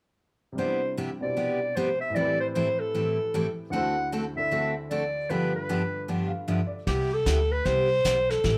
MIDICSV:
0, 0, Header, 1, 6, 480
1, 0, Start_track
1, 0, Key_signature, 0, "major"
1, 0, Tempo, 392927
1, 711, Time_signature, 4, 2, 24, 8
1, 10480, End_track
2, 0, Start_track
2, 0, Title_t, "Clarinet"
2, 0, Program_c, 0, 71
2, 711, Note_on_c, 0, 72, 77
2, 1158, Note_off_c, 0, 72, 0
2, 1494, Note_on_c, 0, 74, 80
2, 2140, Note_on_c, 0, 72, 83
2, 2158, Note_off_c, 0, 74, 0
2, 2446, Note_off_c, 0, 72, 0
2, 2454, Note_on_c, 0, 76, 84
2, 2625, Note_on_c, 0, 74, 90
2, 2644, Note_off_c, 0, 76, 0
2, 2926, Note_off_c, 0, 74, 0
2, 2933, Note_on_c, 0, 72, 78
2, 3012, Note_off_c, 0, 72, 0
2, 3108, Note_on_c, 0, 72, 84
2, 3414, Note_on_c, 0, 69, 86
2, 3433, Note_off_c, 0, 72, 0
2, 4379, Note_off_c, 0, 69, 0
2, 4542, Note_on_c, 0, 78, 100
2, 4994, Note_off_c, 0, 78, 0
2, 5333, Note_on_c, 0, 76, 91
2, 5784, Note_off_c, 0, 76, 0
2, 5988, Note_on_c, 0, 74, 83
2, 6470, Note_on_c, 0, 71, 89
2, 6488, Note_off_c, 0, 74, 0
2, 6781, Note_off_c, 0, 71, 0
2, 6787, Note_on_c, 0, 71, 78
2, 7391, Note_off_c, 0, 71, 0
2, 8397, Note_on_c, 0, 67, 90
2, 8713, Note_on_c, 0, 69, 95
2, 8731, Note_off_c, 0, 67, 0
2, 9186, Note_on_c, 0, 71, 91
2, 9204, Note_off_c, 0, 69, 0
2, 9351, Note_on_c, 0, 72, 112
2, 9369, Note_off_c, 0, 71, 0
2, 10145, Note_on_c, 0, 69, 95
2, 10164, Note_off_c, 0, 72, 0
2, 10480, Note_off_c, 0, 69, 0
2, 10480, End_track
3, 0, Start_track
3, 0, Title_t, "Upright piano"
3, 0, Program_c, 1, 0
3, 640, Note_on_c, 1, 48, 49
3, 672, Note_on_c, 1, 55, 46
3, 708, Note_on_c, 1, 62, 48
3, 740, Note_on_c, 1, 64, 43
3, 1471, Note_off_c, 1, 64, 0
3, 1476, Note_on_c, 1, 47, 42
3, 1489, Note_on_c, 1, 64, 39
3, 1499, Note_on_c, 1, 67, 37
3, 1514, Note_on_c, 1, 72, 46
3, 2564, Note_on_c, 1, 45, 54
3, 2597, Note_off_c, 1, 48, 0
3, 2598, Note_on_c, 1, 52, 49
3, 2613, Note_off_c, 1, 55, 0
3, 2621, Note_off_c, 1, 47, 0
3, 2627, Note_off_c, 1, 64, 0
3, 2630, Note_on_c, 1, 60, 46
3, 2632, Note_off_c, 1, 62, 0
3, 2632, Note_off_c, 1, 67, 0
3, 2640, Note_off_c, 1, 72, 0
3, 2663, Note_on_c, 1, 67, 47
3, 2696, Note_on_c, 1, 71, 60
3, 4519, Note_off_c, 1, 45, 0
3, 4524, Note_on_c, 1, 38, 54
3, 4537, Note_off_c, 1, 52, 0
3, 4540, Note_on_c, 1, 50, 50
3, 4553, Note_off_c, 1, 60, 0
3, 4557, Note_on_c, 1, 64, 50
3, 4569, Note_off_c, 1, 67, 0
3, 4573, Note_on_c, 1, 66, 52
3, 4586, Note_off_c, 1, 71, 0
3, 4587, Note_on_c, 1, 72, 58
3, 5307, Note_off_c, 1, 50, 0
3, 5325, Note_on_c, 1, 50, 46
3, 5332, Note_off_c, 1, 64, 0
3, 5338, Note_on_c, 1, 62, 40
3, 5350, Note_on_c, 1, 64, 43
3, 5363, Note_on_c, 1, 69, 52
3, 6453, Note_off_c, 1, 50, 0
3, 6459, Note_off_c, 1, 38, 0
3, 6461, Note_off_c, 1, 69, 0
3, 6468, Note_on_c, 1, 43, 50
3, 6471, Note_on_c, 1, 50, 48
3, 6472, Note_off_c, 1, 62, 0
3, 6477, Note_on_c, 1, 65, 45
3, 6478, Note_off_c, 1, 64, 0
3, 6480, Note_on_c, 1, 69, 45
3, 6484, Note_off_c, 1, 66, 0
3, 6487, Note_on_c, 1, 71, 55
3, 6491, Note_off_c, 1, 72, 0
3, 7668, Note_on_c, 1, 77, 44
3, 7913, Note_on_c, 1, 76, 47
3, 8006, Note_off_c, 1, 77, 0
3, 8146, Note_on_c, 1, 74, 46
3, 8280, Note_off_c, 1, 76, 0
3, 8391, Note_off_c, 1, 43, 0
3, 8393, Note_off_c, 1, 50, 0
3, 8395, Note_off_c, 1, 65, 0
3, 8397, Note_off_c, 1, 69, 0
3, 8400, Note_off_c, 1, 71, 0
3, 8484, Note_off_c, 1, 74, 0
3, 10480, End_track
4, 0, Start_track
4, 0, Title_t, "Steel-string acoustic guitar"
4, 0, Program_c, 2, 25
4, 708, Note_on_c, 2, 48, 53
4, 712, Note_on_c, 2, 55, 48
4, 713, Note_on_c, 2, 59, 55
4, 713, Note_on_c, 2, 64, 60
4, 717, Note_on_c, 2, 67, 61
4, 978, Note_off_c, 2, 48, 0
4, 980, Note_off_c, 2, 55, 0
4, 980, Note_off_c, 2, 59, 0
4, 980, Note_off_c, 2, 64, 0
4, 982, Note_off_c, 2, 67, 0
4, 1190, Note_on_c, 2, 48, 63
4, 1194, Note_on_c, 2, 55, 65
4, 1197, Note_on_c, 2, 59, 65
4, 1201, Note_on_c, 2, 64, 68
4, 1201, Note_on_c, 2, 67, 76
4, 1333, Note_off_c, 2, 48, 0
4, 1335, Note_off_c, 2, 55, 0
4, 1336, Note_off_c, 2, 59, 0
4, 1338, Note_off_c, 2, 64, 0
4, 1339, Note_off_c, 2, 67, 0
4, 1668, Note_on_c, 2, 48, 48
4, 1671, Note_on_c, 2, 55, 52
4, 1672, Note_on_c, 2, 59, 56
4, 1676, Note_on_c, 2, 64, 56
4, 1679, Note_on_c, 2, 67, 52
4, 1938, Note_off_c, 2, 48, 0
4, 1940, Note_off_c, 2, 55, 0
4, 1940, Note_off_c, 2, 59, 0
4, 1942, Note_off_c, 2, 64, 0
4, 1944, Note_off_c, 2, 67, 0
4, 2156, Note_on_c, 2, 48, 64
4, 2160, Note_on_c, 2, 55, 65
4, 2161, Note_on_c, 2, 59, 77
4, 2163, Note_on_c, 2, 64, 73
4, 2166, Note_on_c, 2, 67, 79
4, 2296, Note_off_c, 2, 48, 0
4, 2298, Note_off_c, 2, 55, 0
4, 2299, Note_off_c, 2, 59, 0
4, 2300, Note_off_c, 2, 64, 0
4, 2301, Note_off_c, 2, 67, 0
4, 2633, Note_on_c, 2, 45, 54
4, 2637, Note_on_c, 2, 52, 54
4, 2639, Note_on_c, 2, 55, 54
4, 2640, Note_on_c, 2, 60, 54
4, 2645, Note_on_c, 2, 64, 58
4, 2646, Note_on_c, 2, 69, 61
4, 2901, Note_off_c, 2, 45, 0
4, 2903, Note_off_c, 2, 52, 0
4, 2904, Note_off_c, 2, 55, 0
4, 2905, Note_off_c, 2, 60, 0
4, 2907, Note_off_c, 2, 64, 0
4, 2908, Note_off_c, 2, 69, 0
4, 3117, Note_on_c, 2, 45, 69
4, 3120, Note_on_c, 2, 52, 64
4, 3125, Note_on_c, 2, 55, 68
4, 3125, Note_on_c, 2, 60, 72
4, 3129, Note_on_c, 2, 64, 69
4, 3130, Note_on_c, 2, 69, 77
4, 3257, Note_off_c, 2, 45, 0
4, 3259, Note_off_c, 2, 52, 0
4, 3261, Note_off_c, 2, 55, 0
4, 3261, Note_off_c, 2, 60, 0
4, 3263, Note_off_c, 2, 64, 0
4, 3264, Note_off_c, 2, 69, 0
4, 3597, Note_on_c, 2, 45, 51
4, 3598, Note_on_c, 2, 52, 48
4, 3599, Note_on_c, 2, 55, 57
4, 3605, Note_on_c, 2, 60, 55
4, 3605, Note_on_c, 2, 64, 54
4, 3609, Note_on_c, 2, 69, 52
4, 3864, Note_off_c, 2, 45, 0
4, 3864, Note_off_c, 2, 52, 0
4, 3864, Note_off_c, 2, 55, 0
4, 3867, Note_off_c, 2, 60, 0
4, 3867, Note_off_c, 2, 64, 0
4, 3869, Note_off_c, 2, 69, 0
4, 4081, Note_on_c, 2, 45, 72
4, 4082, Note_on_c, 2, 52, 75
4, 4087, Note_on_c, 2, 55, 73
4, 4090, Note_on_c, 2, 60, 72
4, 4090, Note_on_c, 2, 64, 74
4, 4092, Note_on_c, 2, 69, 70
4, 4219, Note_off_c, 2, 45, 0
4, 4220, Note_off_c, 2, 52, 0
4, 4223, Note_off_c, 2, 55, 0
4, 4224, Note_off_c, 2, 60, 0
4, 4224, Note_off_c, 2, 64, 0
4, 4225, Note_off_c, 2, 69, 0
4, 4552, Note_on_c, 2, 50, 54
4, 4556, Note_on_c, 2, 57, 57
4, 4557, Note_on_c, 2, 60, 55
4, 4560, Note_on_c, 2, 66, 59
4, 4563, Note_on_c, 2, 69, 65
4, 4821, Note_off_c, 2, 50, 0
4, 4823, Note_off_c, 2, 57, 0
4, 4823, Note_off_c, 2, 60, 0
4, 4825, Note_off_c, 2, 66, 0
4, 4826, Note_off_c, 2, 69, 0
4, 5037, Note_on_c, 2, 50, 63
4, 5038, Note_on_c, 2, 57, 66
4, 5043, Note_on_c, 2, 60, 76
4, 5044, Note_on_c, 2, 66, 69
4, 5048, Note_on_c, 2, 69, 75
4, 5177, Note_off_c, 2, 50, 0
4, 5178, Note_off_c, 2, 57, 0
4, 5180, Note_off_c, 2, 60, 0
4, 5181, Note_off_c, 2, 66, 0
4, 5183, Note_off_c, 2, 69, 0
4, 5512, Note_on_c, 2, 50, 49
4, 5516, Note_on_c, 2, 57, 53
4, 5519, Note_on_c, 2, 60, 52
4, 5523, Note_on_c, 2, 66, 56
4, 5524, Note_on_c, 2, 69, 54
4, 5781, Note_off_c, 2, 50, 0
4, 5783, Note_off_c, 2, 57, 0
4, 5785, Note_off_c, 2, 60, 0
4, 5786, Note_off_c, 2, 66, 0
4, 5787, Note_off_c, 2, 69, 0
4, 5995, Note_on_c, 2, 50, 65
4, 5997, Note_on_c, 2, 57, 70
4, 6003, Note_on_c, 2, 60, 72
4, 6004, Note_on_c, 2, 66, 75
4, 6006, Note_on_c, 2, 69, 72
4, 6137, Note_off_c, 2, 50, 0
4, 6138, Note_off_c, 2, 57, 0
4, 6140, Note_off_c, 2, 60, 0
4, 6141, Note_off_c, 2, 66, 0
4, 6142, Note_off_c, 2, 69, 0
4, 6471, Note_on_c, 2, 43, 51
4, 6477, Note_on_c, 2, 50, 56
4, 6479, Note_on_c, 2, 53, 52
4, 6482, Note_on_c, 2, 59, 55
4, 6484, Note_on_c, 2, 67, 60
4, 6485, Note_on_c, 2, 62, 58
4, 6741, Note_off_c, 2, 43, 0
4, 6743, Note_off_c, 2, 50, 0
4, 6745, Note_off_c, 2, 53, 0
4, 6746, Note_off_c, 2, 59, 0
4, 6747, Note_off_c, 2, 62, 0
4, 6747, Note_off_c, 2, 67, 0
4, 6952, Note_on_c, 2, 43, 68
4, 6956, Note_on_c, 2, 50, 66
4, 6958, Note_on_c, 2, 53, 67
4, 6960, Note_on_c, 2, 59, 71
4, 6963, Note_on_c, 2, 62, 71
4, 6964, Note_on_c, 2, 67, 71
4, 7095, Note_off_c, 2, 43, 0
4, 7097, Note_off_c, 2, 50, 0
4, 7098, Note_off_c, 2, 53, 0
4, 7099, Note_off_c, 2, 59, 0
4, 7101, Note_off_c, 2, 62, 0
4, 7101, Note_off_c, 2, 67, 0
4, 7429, Note_on_c, 2, 43, 50
4, 7431, Note_on_c, 2, 50, 55
4, 7434, Note_on_c, 2, 53, 55
4, 7435, Note_on_c, 2, 59, 55
4, 7439, Note_on_c, 2, 62, 57
4, 7440, Note_on_c, 2, 67, 53
4, 7700, Note_off_c, 2, 43, 0
4, 7701, Note_off_c, 2, 50, 0
4, 7702, Note_off_c, 2, 53, 0
4, 7702, Note_off_c, 2, 59, 0
4, 7705, Note_off_c, 2, 62, 0
4, 7705, Note_off_c, 2, 67, 0
4, 7911, Note_on_c, 2, 43, 68
4, 7916, Note_on_c, 2, 50, 64
4, 7916, Note_on_c, 2, 59, 73
4, 7917, Note_on_c, 2, 53, 66
4, 7920, Note_on_c, 2, 62, 71
4, 7922, Note_on_c, 2, 67, 71
4, 8055, Note_off_c, 2, 43, 0
4, 8057, Note_off_c, 2, 50, 0
4, 8057, Note_off_c, 2, 53, 0
4, 8057, Note_off_c, 2, 59, 0
4, 8059, Note_off_c, 2, 62, 0
4, 8060, Note_off_c, 2, 67, 0
4, 8394, Note_on_c, 2, 48, 59
4, 8397, Note_on_c, 2, 55, 61
4, 8399, Note_on_c, 2, 59, 61
4, 8402, Note_on_c, 2, 64, 59
4, 8405, Note_on_c, 2, 67, 62
4, 8662, Note_off_c, 2, 48, 0
4, 8663, Note_off_c, 2, 55, 0
4, 8664, Note_off_c, 2, 59, 0
4, 8666, Note_off_c, 2, 64, 0
4, 8667, Note_off_c, 2, 67, 0
4, 8873, Note_on_c, 2, 48, 66
4, 8877, Note_on_c, 2, 55, 72
4, 8877, Note_on_c, 2, 59, 71
4, 8881, Note_on_c, 2, 64, 77
4, 8882, Note_on_c, 2, 67, 81
4, 9015, Note_off_c, 2, 48, 0
4, 9017, Note_off_c, 2, 55, 0
4, 9017, Note_off_c, 2, 59, 0
4, 9019, Note_off_c, 2, 64, 0
4, 9020, Note_off_c, 2, 67, 0
4, 9346, Note_on_c, 2, 48, 53
4, 9350, Note_on_c, 2, 55, 55
4, 9356, Note_on_c, 2, 59, 51
4, 9357, Note_on_c, 2, 64, 56
4, 9359, Note_on_c, 2, 67, 59
4, 9618, Note_off_c, 2, 48, 0
4, 9619, Note_off_c, 2, 55, 0
4, 9622, Note_off_c, 2, 59, 0
4, 9623, Note_off_c, 2, 64, 0
4, 9624, Note_off_c, 2, 67, 0
4, 9828, Note_on_c, 2, 48, 67
4, 9830, Note_on_c, 2, 55, 74
4, 9833, Note_on_c, 2, 59, 73
4, 9834, Note_on_c, 2, 64, 69
4, 9840, Note_on_c, 2, 67, 76
4, 9972, Note_off_c, 2, 48, 0
4, 9973, Note_off_c, 2, 55, 0
4, 9975, Note_off_c, 2, 59, 0
4, 9976, Note_off_c, 2, 64, 0
4, 9978, Note_off_c, 2, 67, 0
4, 10306, Note_on_c, 2, 52, 58
4, 10311, Note_on_c, 2, 55, 61
4, 10314, Note_on_c, 2, 60, 57
4, 10316, Note_on_c, 2, 64, 61
4, 10318, Note_on_c, 2, 69, 62
4, 10480, Note_off_c, 2, 52, 0
4, 10480, Note_off_c, 2, 55, 0
4, 10480, Note_off_c, 2, 60, 0
4, 10480, Note_off_c, 2, 64, 0
4, 10480, Note_off_c, 2, 69, 0
4, 10480, End_track
5, 0, Start_track
5, 0, Title_t, "Upright bass"
5, 0, Program_c, 3, 32
5, 8391, Note_on_c, 3, 36, 80
5, 8776, Note_off_c, 3, 36, 0
5, 8869, Note_on_c, 3, 38, 81
5, 9279, Note_off_c, 3, 38, 0
5, 9352, Note_on_c, 3, 36, 77
5, 9760, Note_off_c, 3, 36, 0
5, 9833, Note_on_c, 3, 35, 74
5, 10241, Note_off_c, 3, 35, 0
5, 10312, Note_on_c, 3, 33, 83
5, 10480, Note_off_c, 3, 33, 0
5, 10480, End_track
6, 0, Start_track
6, 0, Title_t, "Drums"
6, 8391, Note_on_c, 9, 36, 22
6, 8393, Note_on_c, 9, 25, 56
6, 8393, Note_on_c, 9, 38, 43
6, 8514, Note_off_c, 9, 36, 0
6, 8515, Note_off_c, 9, 38, 0
6, 8871, Note_on_c, 9, 36, 21
6, 8872, Note_on_c, 9, 38, 63
6, 8872, Note_on_c, 9, 44, 51
6, 8993, Note_off_c, 9, 36, 0
6, 8994, Note_off_c, 9, 38, 0
6, 8994, Note_off_c, 9, 44, 0
6, 9351, Note_on_c, 9, 36, 20
6, 9352, Note_off_c, 9, 25, 0
6, 9352, Note_on_c, 9, 25, 41
6, 9352, Note_on_c, 9, 38, 38
6, 9473, Note_off_c, 9, 36, 0
6, 9474, Note_off_c, 9, 38, 0
6, 9832, Note_on_c, 9, 36, 18
6, 9834, Note_on_c, 9, 38, 66
6, 9834, Note_on_c, 9, 44, 62
6, 9954, Note_off_c, 9, 36, 0
6, 9956, Note_off_c, 9, 38, 0
6, 9956, Note_off_c, 9, 44, 0
6, 10144, Note_on_c, 9, 38, 37
6, 10266, Note_off_c, 9, 38, 0
6, 10312, Note_on_c, 9, 36, 23
6, 10313, Note_off_c, 9, 25, 0
6, 10313, Note_on_c, 9, 25, 49
6, 10313, Note_on_c, 9, 38, 45
6, 10435, Note_off_c, 9, 36, 0
6, 10435, Note_off_c, 9, 38, 0
6, 10480, Note_off_c, 9, 25, 0
6, 10480, End_track
0, 0, End_of_file